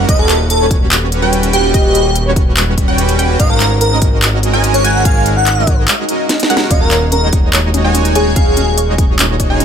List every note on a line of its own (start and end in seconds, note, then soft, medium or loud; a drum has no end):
0.08 3.38 D#1 medium
0.08 0.29 G3 medium
0.08 0.29 C#4 medium
0.08 0.29 F#4 medium
0.08 0.29 B4 medium
0.08 0.28 D#5 medium
0.08 0.29 D#5 medium
0.08 0.17 D#5 loud
0.08 kick loud
0.08 closed hi-hat medium
0.19 0.35 A4 medium
0.29 clap medium
0.29 closed hi-hat medium
0.50 0.66 A4 medium
0.50 closed hi-hat medium
0.60 1.20 G3 medium
0.60 1.20 C#4 medium
0.60 1.20 F#4 medium
0.60 1.20 B4 medium
0.60 1.20 C#5 medium
0.71 kick loud
0.71 closed hi-hat medium
0.91 clap loud
0.91 closed hi-hat medium
1.12 closed hi-hat medium
1.22 1.51 G3 medium
1.22 1.51 C#4 medium
1.22 1.51 F#4 medium
1.22 1.51 B4 medium
1.22 1.51 G5 loud
1.33 closed hi-hat medium
1.43 closed hi-hat medium
1.53 1.72 G3 medium
1.53 1.72 C#4 medium
1.53 1.72 F#4 medium
1.53 1.69 G4 loud
1.53 1.72 B4 medium
1.53 1.72 G5 loud
1.53 1.72 G5 medium
1.53 closed hi-hat medium
1.74 1.94 G3 medium
1.74 1.94 C#4 medium
1.74 1.94 F#4 medium
1.74 1.83 G4 medium
1.74 1.94 B4 medium
1.74 1.94 D#5 medium
1.74 kick loud
1.74 closed hi-hat medium
1.85 2.16 G4 loud
1.95 closed hi-hat medium
2.16 closed hi-hat medium
2.26 2.86 G3 medium
2.26 2.86 C#4 medium
2.26 2.86 F#4 medium
2.26 2.86 B4 medium
2.26 2.86 C#5 medium
2.36 kick loud
2.36 closed hi-hat medium
2.57 clap loud
2.57 closed hi-hat medium
2.78 kick medium
2.78 closed hi-hat medium
2.88 3.16 G3 medium
2.88 3.17 C#4 medium
2.88 3.16 F#4 medium
2.88 3.16 B4 medium
2.88 3.16 G5 loud
2.88 3.17 G5 loud
2.98 closed hi-hat medium
3.09 closed hi-hat medium
3.19 3.37 G3 medium
3.19 3.37 C#4 medium
3.19 3.37 F#4 medium
3.19 3.37 B4 medium
3.19 3.37 G5 loud
3.19 3.37 G5 medium
3.19 closed hi-hat medium
3.40 5.88 G#1 medium
3.40 3.60 G#3 medium
3.40 3.60 C#4 medium
3.40 3.60 F#4 medium
3.40 3.60 A#4 medium
3.40 3.48 D#5 loud
3.40 3.60 F5 medium
3.40 kick loud
3.40 closed hi-hat medium
3.50 3.66 A#4 medium
3.60 clap medium
3.60 closed hi-hat medium
3.81 3.97 A#4 medium
3.81 closed hi-hat medium
3.91 4.51 G#3 medium
3.91 4.51 C#4 medium
3.91 4.51 F#4 medium
3.91 4.51 A#4 medium
3.91 4.51 D#5 medium
4.02 kick loud
4.02 closed hi-hat medium
4.22 clap loud
4.22 closed hi-hat medium
4.43 closed hi-hat medium
4.53 4.82 G#3 medium
4.53 4.82 C#4 medium
4.53 4.82 F#4 medium
4.53 4.82 A#4 medium
4.53 4.82 G#5 loud
4.64 closed hi-hat medium
4.74 4.82 C#5 medium
4.74 closed hi-hat medium
4.84 5.03 G#3 medium
4.84 5.03 C#4 medium
4.84 5.03 F#4 medium
4.84 5.03 A#4 medium
4.84 4.91 F#5 medium
4.84 5.03 G#5 medium
4.84 closed hi-hat medium
4.95 5.01 F#5 medium
5.05 5.25 G#3 medium
5.05 5.25 C#4 medium
5.05 5.25 F#4 medium
5.05 5.25 A#4 medium
5.05 5.25 F5 medium
5.05 5.21 G#5 medium
5.05 kick loud
5.05 closed hi-hat medium
5.26 closed hi-hat medium
5.36 5.67 F#5 loud
5.46 clap medium
5.46 closed hi-hat medium
5.57 6.17 G#3 medium
5.57 6.17 C#4 medium
5.57 6.17 F#4 medium
5.57 6.17 A#4 medium
5.57 6.17 D#5 medium
5.67 kick loud
5.67 closed hi-hat medium
5.88 clap loud
5.88 closed hi-hat medium
5.88 swell medium
6.09 closed hi-hat medium
6.29 snare medium
6.29 closed hi-hat medium
6.40 snare medium
6.40 closed hi-hat medium
6.50 6.68 G#3 loud
6.50 6.68 C#4 medium
6.50 6.68 F#4 medium
6.50 6.68 A#4 medium
6.50 6.68 F#5 loud
6.50 closed hi-hat medium
6.57 snare loud
6.71 9.65 D#1 medium
6.71 6.91 G#3 medium
6.71 6.76 C#4 medium
6.71 6.91 D#4 medium
6.71 6.91 F#4 medium
6.71 6.91 C#5 medium
6.71 6.79 D#5 medium
6.71 6.91 F5 medium
6.71 kick loud
6.71 closed hi-hat medium
6.81 6.97 A#4 loud
6.91 6.95 C#5 loud
6.91 clap medium
6.91 closed hi-hat medium
7.12 7.14 C#4 medium
7.12 7.28 A#4 medium
7.12 closed hi-hat medium
7.22 7.83 G#3 medium
7.22 7.82 D#4 medium
7.22 7.82 F#4 medium
7.22 7.83 C#5 medium
7.22 7.82 D#5 medium
7.33 7.38 C#4 medium
7.33 kick loud
7.33 closed hi-hat medium
7.53 7.57 C#5 loud
7.53 clap loud
7.53 closed hi-hat medium
7.74 7.76 C#4 loud
7.74 closed hi-hat medium
7.85 8.13 G#3 medium
7.85 8.13 D#4 medium
7.85 8.13 F#4 medium
7.85 8.13 C#5 medium
7.85 8.13 G#5 loud
7.95 8.00 C#4 medium
7.95 closed hi-hat medium
8.05 closed hi-hat medium
8.15 8.34 G#3 medium
8.15 8.34 D#4 medium
8.15 8.34 F#4 medium
8.15 8.31 G#4 medium
8.15 8.19 C#5 loud
8.15 8.34 C#5 medium
8.15 8.34 G#5 loud
8.15 8.34 G#5 medium
8.15 closed hi-hat medium
8.36 8.56 G#3 medium
8.36 8.38 C#4 loud
8.36 8.56 D#4 medium
8.36 8.56 F#4 medium
8.36 8.45 G#4 medium
8.36 8.56 C#5 medium
8.36 8.56 F5 medium
8.36 kick loud
8.36 closed hi-hat medium
8.47 8.78 G#4 loud
8.57 8.62 C#4 medium
8.57 closed hi-hat medium
8.78 8.81 C#5 loud
8.78 closed hi-hat medium
8.88 9.48 G#3 medium
8.88 9.48 D#4 medium
8.88 9.48 F#4 medium
8.88 9.48 C#5 medium
8.88 9.48 D#5 medium
8.98 9.01 C#4 loud
8.98 kick loud
8.98 closed hi-hat medium
9.19 9.25 C#4 medium
9.19 clap loud
9.19 closed hi-hat medium
9.40 9.43 C#5 loud
9.40 kick medium
9.40 closed hi-hat medium
9.50 9.65 G#3 medium
9.50 9.65 D#4 medium
9.50 9.65 F#4 medium
9.50 9.65 C#5 medium
9.50 9.65 G#5 loud
9.60 9.63 C#4 loud
9.60 closed hi-hat medium